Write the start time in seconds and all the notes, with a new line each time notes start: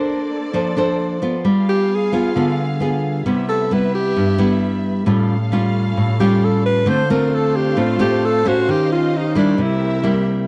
Already playing: A#3 D4 A4 C5 D5
0.53 F3 D4 A4 C5
0.77 D4 A4 C5
1.22 B3 F4
1.44 G3 B3 G#4 F5
1.69 G4
1.95 G#4
2.12 B3 F4 G#4
2.36 D3 B3 F4 G#4
2.80 B3 F4 G#4
3.26 C3 G3 B3 E4 B4 E5
3.49 A4
3.71 G3 B3 E4 B4
3.95 G4
4.17 G2
4.38 G3 B3 E4
5.06 A2 G3 C#4 F4 A4 F5
5.52 G3 C#4 F4
5.97 A2
6.20 G3 C#4 F4 G4
6.45 A4
6.66 B4
6.86 D3 A3 C4 D4 F4 C5 F5
7.10 A3 C4 F4 A#4
7.35 A4
7.56 G4
7.76 A2 A3 C4 F4
7.99 A3 C4 F4 G4
8.25 A4
8.45 C#4 F#4 G4 C5
8.66 D#3 C#4 G4 D#5
8.71 G4
8.93 F4
9.17 D#4
9.35 G3 A#3 D4 E4
9.58 C3 C4 G4 A#4 E5
9.62 E4
10.03 G3 A#3 E4